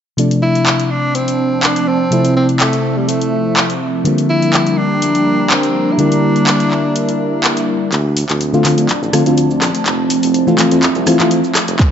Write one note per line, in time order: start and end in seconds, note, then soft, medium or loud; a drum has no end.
0.17 2.09 C3 medium
0.17 2.09 F3 medium
0.17 5.95 F3 medium
0.17 4.02 A3 medium
0.17 2.09 A3 medium
0.17 4.01 C4 medium
0.17 4.83 C4 medium
0.17 2.10 D4 medium
0.17 4.02 C5 medium
0.17 closed hi-hat medium
0.31 closed hi-hat soft
0.43 4.83 F3 medium
0.43 0.85 E4 loud
0.55 closed hi-hat soft
0.66 clap loud
0.66 closed hi-hat medium
0.73 4.05 A5 medium
0.79 2.90 D5 medium
0.79 closed hi-hat medium
0.85 0.93 E4 medium
0.91 1.17 D4 loud
1.15 1.65 C4 loud
1.15 closed hi-hat medium
1.28 closed hi-hat medium
1.63 1.89 D4 loud
1.63 clap loud
1.63 closed hi-hat medium
1.76 closed hi-hat medium
1.88 2.36 C4 loud
2.11 4.02 C3 medium
2.11 4.02 F3 medium
2.11 4.03 A3 medium
2.11 4.03 E4 medium
2.11 closed hi-hat medium
2.25 closed hi-hat soft
2.36 2.47 C4 medium
2.49 closed hi-hat soft
2.60 2.99 A3 medium
2.60 4.05 E5 medium
2.60 clap loud
2.60 closed hi-hat medium
2.73 closed hi-hat medium
2.97 3.10 G3 medium
3.09 3.81 A3 medium
3.09 closed hi-hat medium
3.21 closed hi-hat medium
3.57 clap loud
3.57 closed hi-hat medium
3.70 closed hi-hat soft
4.04 5.96 D3 medium
4.04 5.97 F3 medium
4.04 5.96 G3 medium
4.04 7.89 G3 medium
4.04 7.89 A#3 medium
4.04 5.96 A#3 medium
4.04 7.89 D4 medium
4.04 8.70 D4 medium
4.04 7.89 A#4 medium
4.04 closed hi-hat medium
4.18 closed hi-hat soft
4.23 7.93 A#5 medium
4.28 4.79 E4 loud
4.28 8.70 G4 medium
4.28 5.99 G5 medium
4.42 closed hi-hat soft
4.53 clap loud
4.53 closed hi-hat medium
4.67 closed hi-hat soft
4.78 5.52 D4 loud
5.02 closed hi-hat medium
5.15 closed hi-hat soft
5.50 5.94 C4 medium
5.50 clap loud
5.50 closed hi-hat medium
5.63 closed hi-hat soft
5.92 6.01 E4 medium
5.98 7.89 D3 medium
5.98 7.90 G3 medium
5.98 7.90 A#3 medium
5.98 7.44 D4 medium
5.98 7.91 E4 medium
5.98 7.90 E4 medium
5.98 closed hi-hat medium
6.10 8.70 E5 medium
6.10 closed hi-hat soft
6.36 closed hi-hat soft
6.47 clap loud
6.47 closed hi-hat medium
6.60 closed hi-hat soft
6.71 clap soft
6.96 closed hi-hat medium
7.09 closed hi-hat soft
7.44 clap loud
7.44 closed hi-hat medium
7.57 closed hi-hat soft
7.92 8.24 D2 loud
7.92 11.76 A3 medium
7.92 11.91 C4 medium
7.92 9.84 C4 medium
7.92 9.84 D4 medium
7.92 11.91 F4 medium
7.92 11.76 C5 medium
7.92 clap soft
7.92 closed hi-hat medium
7.92 cabasa medium
7.97 11.91 F3 medium
8.17 open hi-hat loud
8.17 cabasa medium
8.24 11.79 A5 medium
8.29 8.73 D2 medium
8.29 clap soft
8.29 closed hi-hat medium
8.29 cabasa soft
8.38 10.63 D5 medium
8.38 closed hi-hat medium
8.38 cabasa soft
8.53 8.63 D3 medium
8.53 8.63 A3 medium
8.53 8.63 C4 medium
8.53 8.64 F4 medium
8.53 cabasa soft
8.65 8.87 D3 medium
8.65 8.87 A3 medium
8.65 8.87 C4 medium
8.65 8.87 F4 medium
8.65 clap soft
8.65 open hi-hat loud
8.65 cabasa medium
8.78 8.95 D1 medium
8.78 closed hi-hat medium
8.78 cabasa soft
8.89 clap medium
8.89 closed hi-hat medium
8.89 cabasa soft
9.02 9.10 A1 loud
9.02 cabasa soft
9.13 9.23 D3 medium
9.13 9.23 A3 medium
9.13 9.23 C4 medium
9.13 9.24 F4 medium
9.13 cross-stick medium
9.13 open hi-hat loud
9.13 cabasa medium
9.26 9.63 D2 medium
9.26 9.48 D3 medium
9.26 9.48 A3 medium
9.26 9.48 C4 medium
9.26 9.48 F4 medium
9.26 closed hi-hat medium
9.26 cabasa soft
9.37 closed hi-hat medium
9.37 cabasa medium
9.51 cabasa soft
9.62 9.71 A1 loud
9.62 cross-stick medium
9.62 clap medium
9.62 open hi-hat loud
9.62 cabasa medium
9.75 closed hi-hat medium
9.75 cabasa soft
9.86 10.18 F1 loud
9.86 11.78 C4 medium
9.86 11.78 E4 medium
9.86 clap medium
9.86 closed hi-hat medium
9.86 cabasa medium
10.10 open hi-hat loud
10.10 cabasa medium
10.23 10.66 F1 medium
10.23 open hi-hat medium
10.23 cabasa soft
10.33 11.80 E5 medium
10.33 closed hi-hat medium
10.33 cabasa medium
10.47 10.57 E3 medium
10.47 10.57 A3 medium
10.47 10.57 C4 medium
10.47 10.57 F4 medium
10.47 cabasa soft
10.58 10.80 E3 medium
10.58 10.80 A3 medium
10.58 10.80 C4 medium
10.58 10.81 F4 medium
10.58 clap medium
10.58 open hi-hat loud
10.58 cabasa loud
10.71 10.89 F2 medium
10.71 closed hi-hat medium
10.71 cabasa soft
10.83 clap medium
10.83 closed hi-hat medium
10.83 cabasa soft
10.95 11.13 C2 medium
10.95 cabasa soft
11.06 11.17 E3 medium
11.06 11.17 A3 medium
11.06 11.17 C4 medium
11.06 11.17 F4 medium
11.06 cross-stick medium
11.06 open hi-hat loud
11.06 cabasa loud
11.19 11.28 F1 medium
11.19 11.41 E3 medium
11.19 11.41 A3 medium
11.19 11.41 C4 medium
11.19 11.42 F4 medium
11.19 clap medium
11.19 closed hi-hat medium
11.19 cabasa soft
11.31 closed hi-hat medium
11.31 cabasa soft
11.44 cabasa soft
11.55 cross-stick medium
11.55 clap medium
11.55 open hi-hat loud
11.55 cabasa loud
11.68 11.77 F1 loud
11.68 closed hi-hat medium
11.68 cabasa soft
11.79 11.91 G1 loud
11.79 11.91 G3 medium
11.79 11.91 A#3 medium
11.79 11.91 D4 medium
11.79 11.91 A#4 medium
11.79 kick loud
11.79 clap medium
11.79 closed hi-hat medium
11.79 cabasa medium